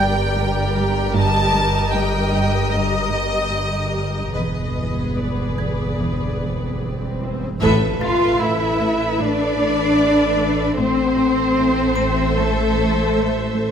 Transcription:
Already playing: synth drone G1, double bass section G1, cello section G2, viola section G3 G4, violin section A#4 D5 G5, music box D5 F#6
0.00 cello section G2, music box G5 G6
0.38 cello section G2
0.77 cello section G3
1.16 cello section G2, violin section D#5 A5
1.55 cello section G3
1.94 cello section G2, violin section G5
2.33 cello section G2
2.73 cello section G2, violin section D#5
3.12 cello section G2
3.53 cello section G2
3.93 cello section G3
4.33 double bass section E1, synth drone G1, cello section E2, viola section B3 G#4, violin section B4 D#5, swell
4.76 cello section E3
5.17 cello section E2, violin section D5
5.58 cello section E2, music box G#6
5.99 cello section E2
6.40 cello section E2
6.81 cello section E2
7.22 cello section E3
7.61 double bass section A1, synth drone A1, cello section A2, timpani A2, viola section A4 B4, violin section E5, impact
8.00 cello section A2 F4, french horn section F4, violin section F5, music box A6
8.40 cello section A2 E4, french horn section E4, violin section E5
8.79 cello section A2
9.19 cello section A2 D4, french horn section D4, violin section D5
9.59 cello section A2
9.98 cello section A3
10.38 cello section A3
10.77 synth drone A1, double bass section A1, cello section A2 C4, french horn section C4, viola section A4 C5, violin section C5 E5
11.17 cello section A2
11.56 cello section A2
11.95 cello section A2, music box C6 C7
12.36 cello section A2 A3, french horn section A3, violin section A4
12.75 cello section A2
13.14 cello section A3
13.53 cello section A3

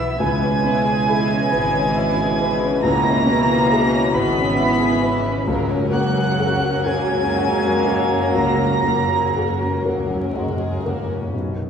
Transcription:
Already playing: felt piano B1 B3 E4 B4 E5, harp B2 G#3 E4, viola section E3 E4, cello section E3, violin section B4 E6, oboe E5, flute section E5
0.00 violin section B3
0.19 felt piano C#2, double bass section C#2, french horn section B2 E3, harp C#3, viola section E3 C#4, cello section G#3, violin section B3 B4 G#6, flute section G#5, oboe G#5
0.43 violin section C#4
0.64 harp B2, felt piano B3, violin section E4
0.86 violin section G#4
1.08 violin section E4, harp E4, felt piano G#4
1.31 violin section C#4
1.51 double bass section G#1, violin section B3, harp G#4, felt piano B4
1.75 violin section C#4
1.96 harp E4, violin section E4, felt piano E5
2.20 violin section G#4
2.39 harp G#3, violin section E4, felt piano B4
2.63 violin section C#4
2.81 double bass section C#2, felt piano C#2, harp C#3, cello section A#3, violin section B3 A#6, flute section A#5, oboe A#5
3.06 violin section C#4
3.26 felt piano B2, harp C#4, violin section E4
3.50 violin section G#4
3.71 harp E4, violin section E4, felt piano G#4
3.94 violin section C#4
4.12 double bass section G#1, cello section B3, violin section B3 B6, harp G#4, felt piano B4, flute section B5, oboe B5
4.38 violin section C#4
4.57 harp E4, violin section E4, felt piano E5
4.81 violin section G#4
5.02 harp G#3, violin section E4, felt piano B4
5.27 violin section C#4
5.47 felt piano C#2, double bass section C#2, harp C#3, french horn section F#3 A#3, viola section F#3 C#4, violin section A#3 A#4
5.63 timpani F#2
5.70 timpani F#2, violin section C#4
5.78 timpani F#2
5.86 timpani F#2
5.91 timpani F#2, cello section F#3, felt piano A#3, harp A#3, violin section F#4 F#6, oboe F#5, flute section F#5
6.01 timpani F#2
6.16 violin section G#4
6.24 timpani F#2
6.32 timpani F#2
6.38 timpani F#2, violin section F#4, harp F#4, felt piano G#4
6.47 timpani F#2
6.55 timpani F#2
6.61 timpani F#2, violin section C#4
6.71 timpani F#2
6.79 timpani F#2
6.86 double bass section C#2, timpani F#2, cello section G#3, violin section A#3 G#6, harp G#4, felt piano A#4, oboe G#5, flute section G#5
6.93 timpani F#2
7.09 timpani F#2, violin section C#4
7.18 timpani F#2
7.26 timpani F#2
7.34 timpani F#2, violin section F#4, harp F#4, felt piano F#5
7.51 timpani F#2
7.59 timpani F#2, violin section G#4
7.67 timpani F#2
7.74 timpani F#2
7.84 harp G#3, violin section F#4, felt piano A#4
7.91 timpani F#2
8.00 timpani F#2
8.09 timpani F#2, violin section C#4
8.17 timpani F#2
8.24 timpani F#2
8.32 felt piano C#2, double bass section C#2, timpani F#2, violin section A#3, cello section A#3, oboe A#5, flute section A#5
8.36 harp C#3, violin section A#6
8.41 timpani F#2
8.48 timpani F#2
8.58 timpani F#2, violin section C#4
8.66 timpani F#2
8.75 timpani F#2
8.82 timpani F#2, felt piano A#3, violin section F#4
8.88 timpani F#2, harp A#3
8.98 timpani F#2
9.07 timpani F#2
9.12 timpani F#2, violin section G#4
9.23 timpani F#2
9.32 timpani F#2
9.36 timpani F#2, violin section F#4, harp F#4, felt piano G#4
9.49 timpani F#2
9.57 timpani F#2, violin section C#4
9.65 timpani F#2
9.74 timpani F#2
9.81 timpani F#2, french horn section F#3
9.86 double bass section C#2, violin section A#3, harp G#4, felt piano A#4
9.90 timpani F#2
9.99 timpani F#2
10.07 timpani F#2, violin section C#4
10.15 timpani F#2
10.23 timpani F#2
10.30 timpani F#2, french horn section G#3
10.36 timpani F#2, violin section F#4, harp F#4, felt piano F#5
10.47 timpani F#2
10.56 timpani F#2
10.61 timpani F#2, violin section G#4
10.72 timpani F#2
10.79 timpani F#2, french horn section A#3
10.85 timpani F#2, harp G#3, violin section F#4, felt piano A#4
10.96 timpani F#2
11.03 timpani F#2
11.11 timpani F#2, violin section C#4
11.15 harp B2
11.20 timpani F#2, harp C#4
11.24 harp D#4
11.28 harp B4
11.33 felt piano B1, double bass section B1, cello section B2, viola section F#3 C#4
11.57 viola section D#3 B3

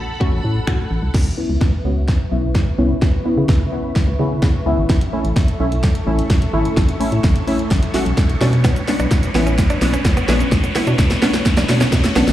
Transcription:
Already playing: synth pluck A3 C#4 F#4, string machine A4 F#5 B5
0.20 synth pluck A3 C#4 F#4, kick
0.33 fm bass A1
0.44 fm bass A2
0.67 fm bass A2, synth pluck A3 C#4 F#4, finger snap, kick
0.91 fm bass A1
1.03 fm bass C2
1.14 fm bass C#2, string machine B4 E5 C#6, kick, snare, crash, riser
1.37 synth pluck B3 C#4 E4
1.50 fm bass C#2
1.61 fm bass B1, kick, snare
1.85 fm bass C#2, synth pluck B3 C#4 F#4
2.08 kick, snare
2.31 fm bass B1, synth pluck B3 C#4 E4
2.55 fm bass C#2, kick, snare
2.78 fm bass C2, synth pluck B3 C#4 E4
3.02 fm bass C#2, kick, snare
3.25 synth pluck B3 C#4 E4
3.38 fm bass C#3
3.49 fm bass C#2, kick, snare
3.72 synth pluck B3 C#4 E4
3.96 kick, snare
4.08 fm bass C#2
4.19 fm bass C#3, synth pluck B3 C#4 E4
4.43 fm bass C#3, kick, snare
4.66 fm bass C#2, synth pluck B3 C#4 E4
4.78 fm bass G#1
4.90 fm bass A1, string machine A4, kick, snare, closed hi-hat
5.01 closed hi-hat
5.13 synth pluck A3 C#4 E4
5.25 fm bass A1, closed hi-hat
5.36 fm bass A1, kick, snare, closed hi-hat
5.48 closed hi-hat
5.60 fm bass B1, synth pluck A3 C#4 E4
5.72 closed hi-hat
5.83 kick, snare, closed hi-hat
5.95 closed hi-hat
6.07 fm bass A1, synth pluck A3 C#4 E4
6.19 closed hi-hat
6.30 fm bass B1, kick, snare, closed hi-hat
6.42 closed hi-hat
6.53 fm bass G#1, synth pluck A3 C#4 E4
6.65 closed hi-hat
6.77 fm bass A1, kick, snare, closed hi-hat
6.89 closed hi-hat
7.00 synth pluck A3 C#4 E4, open hi-hat
7.12 fm bass A2, closed hi-hat
7.24 fm bass A1, kick, snare, closed hi-hat
7.36 closed hi-hat
7.47 synth pluck A3 C#4 E4, open hi-hat
7.59 closed hi-hat
7.71 fm bass A1, kick, snare, closed hi-hat
7.83 closed hi-hat
7.94 fm bass B1, synth pluck A3 C#4 F#4, snare, open hi-hat
8.06 fm bass B1, closed hi-hat
8.17 kick, snare, closed hi-hat
8.29 fm bass B1, closed hi-hat
8.41 fm bass B2, synth pluck B3 C#4 D4, string machine B4 C#5, snare, open hi-hat
8.53 closed hi-hat
8.64 clean electric guitar B3, kick, snare, closed hi-hat, shaker
8.76 closed hi-hat, shaker
8.88 synth pluck B3 C#4 D4, muted clean electric guitar stroke, snare, open hi-hat, shaker
9.00 fm bass B1, clean electric guitar D4, closed hi-hat, shaker
9.11 fm bass B1, muted clean electric guitar stroke, kick, snare, closed hi-hat, shaker
9.23 closed hi-hat, shaker
9.35 fm bass A1, synth pluck B3 C#4 E4, clean electric guitar B3, snare, open hi-hat, shaker
9.46 clean electric guitar C#4, closed hi-hat, shaker
9.58 kick, snare, closed hi-hat, shaker
9.70 clean electric guitar D4, closed hi-hat, shaker
9.82 fm bass B1, synth pluck B3 C#4 D4, muted clean electric guitar stroke, snare, open hi-hat, shaker
9.93 clean electric guitar C#4, closed hi-hat, shaker
10.05 fm bass A1, muted clean electric guitar stroke, kick, snare, closed hi-hat, shaker
10.17 clean electric guitar B3, closed hi-hat, shaker
10.28 fm bass A#1, clean electric guitar A3, synth pluck B3 C#4 D4, snare, open hi-hat, shaker
10.40 closed hi-hat, shaker
10.52 fm bass B1, kick, snare, closed hi-hat, shaker
10.63 muted clean electric guitar stroke, closed hi-hat, shaker
10.75 synth pluck B3 C#4 E4, clean electric guitar B3, snare, open hi-hat, shaker
10.87 fm bass B2, clean electric guitar D4, closed hi-hat, shaker
10.98 fm bass B1, kick, snare, closed hi-hat, shaker
11.10 snare, closed hi-hat, shaker
11.22 synth pluck B3 C#4 D4, clean electric guitar B3, snare, open hi-hat, shaker
11.34 snare, closed hi-hat, shaker
11.45 kick, snare, closed hi-hat, shaker
11.57 fm bass B1, clean electric guitar D4, snare, closed hi-hat, shaker
11.69 fm bass B2, synth pluck B3 C#4 D4, muted clean electric guitar stroke, snare, open hi-hat, shaker
11.81 clean electric guitar C#4, snare, closed hi-hat, shaker
11.92 fm bass B2, kick, snare, closed hi-hat, shaker
12.04 snare, closed hi-hat, shaker
12.16 fm bass B1, synth pluck B3 C#4 D4, clean electric guitar B3, snare, open hi-hat, shaker
12.27 fm bass G#1, snare, closed hi-hat, shaker

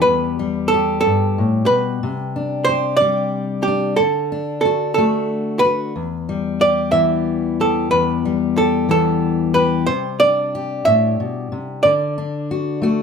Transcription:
Already playing: steel-string acoustic guitar G3 B3 G4
0.02 hollow-body jazz guitar B4
0.07 steel-string acoustic guitar E2
0.39 steel-string acoustic guitar G3
0.68 hollow-body jazz guitar A4
0.74 steel-string acoustic guitar G4
1.01 hollow-body jazz guitar A4
1.06 steel-string acoustic guitar G2
1.38 steel-string acoustic guitar A2
1.66 steel-string acoustic guitar B2, hollow-body jazz guitar B4
2.03 steel-string acoustic guitar C3
2.36 steel-string acoustic guitar D4
2.65 hollow-body jazz guitar C5
2.69 steel-string acoustic guitar G4
2.97 steel-string acoustic guitar G3, hollow-body jazz guitar D5
3.01 steel-string acoustic guitar G4
3.63 hollow-body jazz guitar G4
3.68 steel-string acoustic guitar D4
3.96 steel-string acoustic guitar D3, hollow-body jazz guitar A4
4.32 steel-string acoustic guitar D4
4.61 hollow-body jazz guitar A4
4.65 steel-string acoustic guitar F#4
4.94 steel-string acoustic guitar A3, hollow-body jazz guitar A4
4.98 steel-string acoustic guitar F#4
5.59 hollow-body jazz guitar B4
5.65 steel-string acoustic guitar F#4
5.96 steel-string acoustic guitar E2
6.29 steel-string acoustic guitar G3
6.61 steel-string acoustic guitar G4, hollow-body jazz guitar D5
6.92 steel-string acoustic guitar E3 B3, hollow-body jazz guitar E5
7.60 steel-string acoustic guitar G4, hollow-body jazz guitar A4
7.91 steel-string acoustic guitar E2, hollow-body jazz guitar B4
8.25 steel-string acoustic guitar G3
8.57 steel-string acoustic guitar G4, hollow-body jazz guitar A4
8.89 steel-string acoustic guitar E3 B3, hollow-body jazz guitar A4
9.54 steel-string acoustic guitar G4, hollow-body jazz guitar B4
9.86 steel-string acoustic guitar C3, hollow-body jazz guitar C5
10.20 steel-string acoustic guitar D4, hollow-body jazz guitar D5
10.55 steel-string acoustic guitar G4
10.85 steel-string acoustic guitar A2, hollow-body jazz guitar E5
11.20 steel-string acoustic guitar B2
11.52 steel-string acoustic guitar C3
11.83 steel-string acoustic guitar D3, hollow-body jazz guitar D5
12.18 steel-string acoustic guitar D4
12.51 steel-string acoustic guitar F#4
12.82 steel-string acoustic guitar A3 F#4

